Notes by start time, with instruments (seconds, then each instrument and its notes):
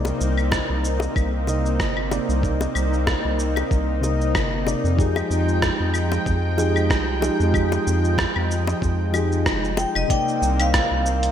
Already playing: analog synth bass C2, synth keys C3 A#3 D#4 D5, analog synth pad A#3 C4 D#4
0.05 high bongo, shaker
0.21 analog synth bass C2, shaker
0.38 claves, shaker
0.52 kick, cross-stick, high bongo, shaker
0.70 analog synth bass C2
0.85 shaker
1.00 high bongo, shaker
1.16 analog synth bass C2, kick, claves, shaker
1.47 synth keys C3 A#3 D#4 D#5, high bongo, shaker
1.66 shaker
1.80 analog synth bass G1, kick, cross-stick, shaker
1.97 claves
2.11 synth keys C3 A#3 D#4 D5, high bongo, shaker
2.29 analog synth bass C2, shaker
2.41 synth keys C3 A#3 D#4 D5, kick, shaker
2.61 high bongo, shaker
2.75 analog synth bass C2, claves, shaker
2.93 shaker
3.07 kick, cross-stick, high bongo, shaker
3.25 analog synth bass C2
3.39 shaker
3.56 high bongo, claves, shaker
3.71 analog synth bass C2, kick, shaker
4.01 synth keys C3 A#3 D#4 D#5, high bongo, shaker
4.21 shaker
4.35 analog synth bass G1, kick, cross-stick, claves, shaker
4.65 synth keys C3 A#3 D#4 D5, high bongo, shaker
4.84 analog synth bass F2, shaker
4.96 synth keys F3 D#4 G4 G#4, analog synth pad F3 G#3 G5, kick, shaker
5.16 high bongo, claves, shaker
5.30 analog synth bass F2, shaker
5.48 shaker
5.62 kick, cross-stick, high bongo, shaker
5.80 analog synth bass F2
5.94 claves, shaker
6.12 high bongo, shaker
6.26 analog synth bass F2, kick, shaker
6.57 synth keys F3 D#4 G4 G#4, high bongo, shaker
6.76 claves, shaker
6.90 analog synth bass C2, kick, cross-stick, shaker
7.21 synth keys F3 D#4 G4 G#4, high bongo, shaker
7.40 analog synth bass F2, shaker
7.52 synth keys F3 D#4 G4, kick, claves, shaker
7.56 synth keys G#4
7.72 high bongo, shaker
7.87 analog synth bass F2, shaker
8.04 shaker
8.18 kick, cross-stick, high bongo, shaker
8.36 analog synth bass F2, claves
8.51 shaker
8.67 high bongo, shaker
8.82 analog synth bass F2, kick, shaker
9.12 synth keys F3 D#4 G4 G#4, high bongo, claves, shaker
9.32 shaker
9.46 analog synth bass F1, kick, cross-stick, shaker
9.64 shaker
9.77 vibraphone G5, high bongo, shaker
9.95 analog synth bass F1, vibraphone D#5, claves, shaker
10.08 synth keys C3 A#3 D#4 D5, analog synth pad A#3 C4 D#4, vibraphone G5, kick, closed hi-hat, shaker
10.28 shaker
10.42 analog synth bass C2, shaker
10.60 vibraphone F5, closed hi-hat, claves, shaker
10.74 kick, cross-stick, closed hi-hat, shaker
10.91 analog synth bass C2
11.06 shaker
11.23 closed hi-hat, shaker